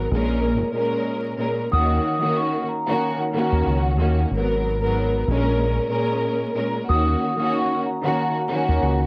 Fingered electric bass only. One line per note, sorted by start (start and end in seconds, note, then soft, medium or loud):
0.11 0.62 A#1 loud
1.73 1.98 D#2 loud
3.52 3.63 D#2 medium
3.66 3.99 C#2 loud
3.99 4.24 D#2 medium
4.31 5.24 G#1 loud
5.28 5.78 A#1 loud
6.89 7.14 D#2 loud
8.68 8.79 D#2 medium
8.83 9.06 C#2 loud